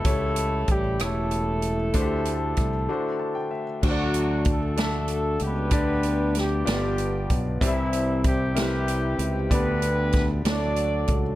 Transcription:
<<
  \new Staff \with { instrumentName = "Grand piano" } { \time 6/8 \key d \mixolydian \tempo 4. = 63 << { r2. | r2 a''16 g''16 e''8 | r2. | r2. |
r2. | r2. | } \\ { <a e' g' cis''>4 r8 <a e' g' cis''>4 r8 | <a d' fis' g' c''>4 r8 <a d' fis' c''>4 r8 | <a d' fis' c'' d''>4 r8 <a d' fis' e''>4 r8 | <b d' g' d''>4 r8 <b f' g' d''>4 r8 |
<c' e' g' d'' e''>4 r8 <c' e' g' bes' b'>4 r8 | <b d' g' d''>4 r8 <a d' fis' d''>4 r8 | } >> }
  \new Staff \with { instrumentName = "Grand piano" } { \clef bass \time 6/8 \key d \mixolydian cis4. r4. | d4. d4. | d4. r4. | d4. g,4. |
c4. r4. | d4. fis4. | }
  \new Staff \with { instrumentName = "Horn section" } { \time 6/8 \key d \mixolydian << { <a a'>4 <g g'>8 <a a'>4.~ | <a a'>2~ <a a'>8 r8 | <fis fis'>4 <a a'>8 <a a'>4 <b b'>8~ | <b b'>4 <g g'>8 <g g'>4 r8 |
<e e'>4 <g g'>8 <g g'>4. | <b b'>4. <d' d''>4 r8 | } \\ { e'4 r8 e'4.~ | e'2~ e'8 r8 | <a d'>4. <d' fis'>4 <d' g'>8~ | <d' g'>4 r8 <b d'>4. |
<g c'>4. <c' e'>4. | <d' g'>4. <fis' a'>4. | } >> }
  \new Staff \with { instrumentName = "Fingered electric bass" } { \clef bass \time 6/8 \key d \mixolydian cis,4 a,,8 e,,4. | d,4 c,8 r4. | d,2~ d,8 cis,8 | d,4. g,,4 b,,8 |
c,2~ c,8 cis,8 | d,4. d,4 cis,8 | }
  \new DrumStaff \with { instrumentName = "Drums" } \drummode { \time 6/8 <hh bd>8 hh8 <hh bd>8 <hh ss>8 hh8 hh8 | <hh bd>8 hh8 <hh bd ss>8 r4. | <cymc bd>8 hh8 <hh bd>8 <hh sn>8 hh8 hh8 | <hh bd>8 hh8 <hh sn>8 <hh sn>8 hh8 <hh bd>8 |
<hh bd>8 hh8 <hh bd>8 <hh sn>8 hh8 hh8 | <hh bd>8 hh8 <hh bd sn>8 <hh sn>8 hh8 <hh bd>8 | }
>>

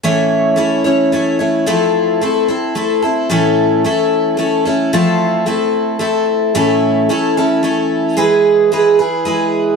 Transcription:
\new Staff \with { instrumentName = "Twelve-string acoustic guitar" } { \time 3/4 \key a \major \tempo 4 = 111 <a, e a cis' e' cis''>4 <a cis' e' cis''>8 <a cis' e' cis''>8 <a cis' e' cis''>8 <a cis' e' cis''>8 | <f a c' e' a'>4 <a c' e' a'>8 <c' e' a'>8 <a c' e' a'>8 <c' e' a'>8 | <a, e a cis' e' a'>4 <a cis' e' a'>4 <a cis' e' a'>8 <a cis' e' a'>8 | <f a c' e' a'>4 <a c' e' a'>4 <a c' e' a'>4 |
<a, e a cis' e' a'>4 <a cis' e' a'>8 <a cis' e' a'>8 <a cis' e' a'>4 | <gis e' gis' b'>4 <gis e' gis' b'>8 <e' gis' b'>8 <gis e' gis' b'>4 | }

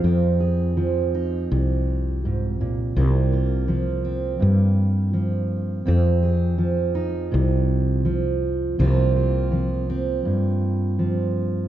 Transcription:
<<
  \new Staff \with { instrumentName = "Steel-string acoustic guitar" } { \clef bass \time 4/4 \key f \minor \tempo 4 = 82 << { c'8 aes'4 ees'2~ ees'8 | bes8 f'4 c'2~ c'8 | c'8 aes'4 ees'2~ ees'8 | <f bes c' f'>8 f'4 c'2~ c'8 | } \\ { <f, f>4 f4 c4 aes,8 bes,8 | c4 f4 g,4 f4 | f,4 f4 c4 f4 | c4 f4 g,4 f4 | } >> }
  \new Staff \with { instrumentName = "Fretless electric bass" } { \clef bass \time 4/4 \key f \minor f,2 c,2 | c,2 g,2 | f,2 c,2 | c,2 r2 | }
>>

